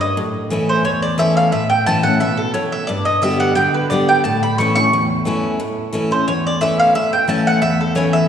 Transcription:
Already playing: G2
0.01 D#5
0.17 A2
0.50 E3 A3 C#4 E4
0.69 C5
0.85 E2 C#5
1.02 D5
1.18 E3 A3 C#4 E4 E5
1.37 F5
1.52 A2 E5
1.70 G5
1.86 E3 A3 C#4 E4 A5
2.03 C#4 E4 F#5
2.20 B2 E5
2.37 A4
2.54 A2 C#5
2.72 E5
2.87 G2 D5
3.05 D#5
3.22 D3 G3 B3 G4 E5
3.40 F#5
3.55 D3 G5
3.74 B4
3.90 D3 G3 B3 G4 D5
4.09 G5
4.24 A2 A5
4.43 B5
4.58 E3 A3 C#4 E4 C#6
4.75 C#4 E4 C#6
4.93 E2
5.25 E3 A3 C#4 E4
5.60 A2
5.93 E3 A3 C#4 E4
6.11 C#4 E4 C5
6.28 E2 C#5
6.47 D5
6.61 E3 A3 C#4 E4 E5
6.79 F5
6.95 A2 E5
7.13 G5
7.28 E3 A3 C#4 E4 A5
7.47 F#5
7.62 E2 E5
7.81 A4
7.95 E3 A3 C#4 E4 C#5
8.13 E5

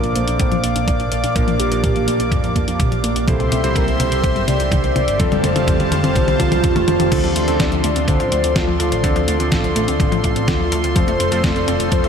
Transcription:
Already playing: F3 A#3 D4 A#4 D5 F5 D6
0.04 A#1 F3, closed hi-hat
0.15 A#1 A#3 C5, closed hi-hat
0.28 A#1 D4, closed hi-hat
0.40 A#1 D3, kick, closed hi-hat, mid tom
0.52 A#2 F3, closed hi-hat
0.63 A#1 A#3 D5, closed hi-hat
0.76 A#1 D4, closed hi-hat
0.88 A#1 D3, kick, closed hi-hat, mid tom
1.00 A#1 F3, closed hi-hat
1.11 A#1 A#3 D5, closed hi-hat
1.24 A#2 D4, closed hi-hat
1.36 A#1 D3 F3 A#3 D4 A#4, kick, closed hi-hat, mid tom
1.48 A#1 F3, closed hi-hat
1.60 A#1 A#3 G4, closed hi-hat
1.72 A#1 F3 A#3 D4 A#4, closed hi-hat
1.84 A#2 D3, kick, closed hi-hat, mid tom
1.96 A#1 F3, closed hi-hat
2.08 A#2 A#3, closed hi-hat
2.20 A#1 D4, closed hi-hat
2.32 F2 D3, kick, closed hi-hat, mid tom
2.44 F2 F3, closed hi-hat
2.56 F2 A#3, kick, closed hi-hat
2.68 F2 D4, closed hi-hat
2.80 A#1 D3, kick, closed hi-hat, mid tom
2.92 A#1 F3, closed hi-hat
3.04 A#1 A#3, closed hi-hat
3.16 A#1 D4, closed hi-hat
3.27 C2 E3 G3 C4 E4 G4 A4 C5 E5 C6, kick, closed hi-hat, mid tom
3.40 C2 G3, closed hi-hat
3.52 C2 C4, closed hi-hat, mid tom
3.64 C2 G3 C4 E4 C5, closed hi-hat
3.76 C2 E3 A#4, kick, closed hi-hat, mid tom
3.88 C2 G3, closed hi-hat
4.00 C2 C4 C5, closed hi-hat, mid tom
4.12 C2 E4, closed hi-hat
4.24 C2 E3, kick, closed hi-hat, mid tom
4.36 G1 G3, closed hi-hat
4.47 C2 C4 D5, closed hi-hat, mid tom
4.60 C2 E4, closed hi-hat
4.72 C2 E3, kick, closed hi-hat, mid tom
4.84 C2 G3, closed hi-hat
4.96 C2 C4 D5, closed hi-hat, mid tom
5.08 G1 E4, closed hi-hat
5.20 F1 F3 G3 C4 F4 A4 C5 F5 A5, kick, closed hi-hat, mid tom
5.32 F1 G3, closed hi-hat, mid tom
5.44 F1 A3 C5, closed hi-hat, mid tom
5.56 F1 G3 C4 F4 A4, closed hi-hat, mid tom
5.68 F2 F3, kick, closed hi-hat, mid tom
5.80 F1 G3, closed hi-hat, mid tom
5.92 F2 A3, closed hi-hat, mid tom
6.04 F1 C4, closed hi-hat, mid tom
6.16 C2 F3, kick, closed hi-hat, mid tom
6.28 C2 G3, closed hi-hat, mid tom
6.40 C2 A3 F4, kick, closed hi-hat, mid tom
6.52 C2 G3, closed hi-hat, mid tom
6.64 F1 C4, kick, closed hi-hat, mid tom
6.76 F1 A3, closed hi-hat, mid tom
6.88 F1 A3, closed hi-hat, mid tom
7.00 F1 G4, closed hi-hat, mid tom
7.12 D2 D3 F3 C4 D4 F4 A4 C5 D5 C6, kick, closed hi-hat, crash
7.24 D2 F3, closed hi-hat
7.36 D2 A3, closed hi-hat
7.48 D2 F3 C4 D4 A4, closed hi-hat
7.60 D2 D3 D5, kick, snare, closed hi-hat
7.72 D2 F3, closed hi-hat
7.84 D2 A3, closed hi-hat
7.96 D2 C4, closed hi-hat
8.08 D2 D3 C5, kick, closed hi-hat
8.20 A1 F3, closed hi-hat
8.32 D2 A3, closed hi-hat
8.44 D2 C4, closed hi-hat
8.56 D2 D3 F4, kick, snare, closed hi-hat
8.68 D2 F3
8.80 D2 A3 F4, closed hi-hat
8.92 A1 C4, closed hi-hat
9.04 D2 D3 F3 C4 D4 A4, kick, closed hi-hat
9.16 D2 F3, closed hi-hat
9.28 D2 A3, closed hi-hat
9.40 D2 F3 C4 D4 A4, closed hi-hat
9.52 A1 D3, kick, snare, closed hi-hat
9.64 D2 F3, closed hi-hat
9.76 A1 A3, closed hi-hat
9.88 D2 C4, closed hi-hat
10.00 A1 D3, kick, closed hi-hat
10.12 A1 F3, closed hi-hat
10.24 A1 A3 F4, kick, closed hi-hat
10.36 A1 C4, closed hi-hat
10.48 D2 D3, kick, snare, closed hi-hat
10.60 D2 F3
10.72 D2 A3, closed hi-hat
10.84 D2 C4, closed hi-hat
10.96 F1 F3 A3 C4 A4 C5, kick, closed hi-hat
11.08 F1 A3, closed hi-hat
11.20 F1 C4, closed hi-hat
11.32 F1 F3 A3 C4 F4 A4, closed hi-hat
11.44 F1 F3 D5, kick, snare, closed hi-hat
11.56 F1 A3, closed hi-hat
11.68 F1 C4, closed hi-hat
11.80 F1 F4, closed hi-hat
11.92 F1 F3 C5, kick, closed hi-hat
12.04 F2 A3, closed hi-hat

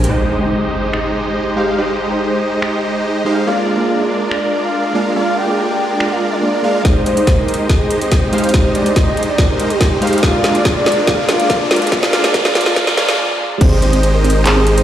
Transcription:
0.04 G#3, closed hi-hat
0.09 G#3 D#4 G4 C5 D#5, impact
0.39 G#3 D#4 G4 C5
0.93 finger snap
1.56 G#3 D#4 G4 C5 F5
1.77 G#3 D#4 G4 C5 D#5
2.08 G#3 D#4 G4 C5
2.62 finger snap
3.25 G#3 D#4 G4 C5 F5
3.46 G#3 A#3 D4 F4 G#4 A#4 D5 F5
3.68 F5
3.77 A#3 F4 G#4 D5
4.00 D5
4.31 D5, finger snap
4.63 F5
4.94 G#3 A#3 D4 F4 G#4 A#4 D5 F5
5.05 F5
5.15 G#3 A#3 D4 F4 G#4 A#4 D5
5.37 G5
5.46 A#3 F4 G#4
5.50 D5
5.58 G5
5.90 G5
6.00 finger snap
6.11 F5
6.32 D5
6.42 A#3 F4 G#4 D5
6.63 G#3 A#3 D4 F4 G#4 A#4 F5
6.84 G#3 D#4 G4 C5 D#5, kick, snare, closed hi-hat, riser
7.06 C5, closed hi-hat
7.15 G#3 D#4 G4, closed hi-hat
7.19 C5
7.27 kick, snare, closed hi-hat
7.38 A#4
7.48 closed hi-hat
7.54 closed hi-hat
7.69 G#4, kick, snare, closed hi-hat
7.91 closed hi-hat
8.01 C5, closed hi-hat
8.12 kick, snare, closed hi-hat
8.32 G#3 D#4 G4 C5 F5, closed hi-hat
8.38 closed hi-hat
8.44 C5, closed hi-hat
8.49 closed hi-hat
8.53 G#3 D#4 G4 C5 D#5, kick, snare, closed hi-hat
8.75 D5, closed hi-hat
8.84 G#3 D#4 G4 C5, closed hi-hat
8.96 D#5, kick, snare, closed hi-hat
9.17 closed hi-hat
9.23 closed hi-hat
9.28 D5
9.38 kick, snare, closed hi-hat
9.49 A#4
9.60 closed hi-hat
9.70 G4, closed hi-hat
9.81 kick, snare, closed hi-hat
10.01 G#3 D#4 G4 C5 F5, closed hi-hat
10.07 closed hi-hat
10.13 closed hi-hat
10.18 closed hi-hat
10.22 A#3 D4 F4 G#4 D5 F5, kick, snare, closed hi-hat
10.44 F5, snare, closed hi-hat
10.53 A#3 F4 G#4, closed hi-hat
10.57 D5
10.65 kick, snare, closed hi-hat
10.76 D5
10.86 snare, closed hi-hat
10.92 closed hi-hat
11.06 G#3 A#3 D4 F4 G#4 A#4 D5 F5, kick, snare, closed hi-hat
11.29 F5, snare, closed hi-hat
11.38 A#3 F4 G#4 D5, closed hi-hat
11.50 kick, snare, closed hi-hat
11.61 D5
11.71 snare, closed hi-hat
11.76 closed hi-hat
11.82 closed hi-hat
11.87 closed hi-hat
11.91 G#3 A#3 F4 G#4 D5 F5, kick, snare, closed hi-hat
12.03 snare
12.13 F5, snare, closed hi-hat
12.22 A#3 F4 G#4, snare, closed hi-hat
12.26 D5
12.33 G#3 A#3 D4 F4 A#4 D5 F5, kick, snare, closed hi-hat
12.45 snare
12.55 F5, snare, closed hi-hat
12.61 A#3, closed hi-hat
12.66 F4 G#4 D5, snare
12.75 G#3 A#3 D4 F4 A#4 D5 F5, kick, snare, closed hi-hat
12.87 snare
12.96 G#3 A#3 D4 F4 G#4 A#4 D5 F5, snare, closed hi-hat
13.09 snare, closed hi-hat
13.18 A#3 F4 G#4 D5
13.39 A#3 F4 G#4 D5
13.61 G#1 G#3 C4 D#4 G4 C5 D#5, kick, closed hi-hat, crash
13.72 C5
13.82 C4 C5, closed hi-hat
13.93 C4, closed hi-hat
14.03 G#4, closed hi-hat
14.14 A#4 C5
14.24 C4, closed hi-hat
14.30 closed hi-hat
14.35 C5
14.45 C4 G#4, clap, closed hi-hat
14.56 C4
14.67 G#4, closed hi-hat
14.77 C5, closed hi-hat

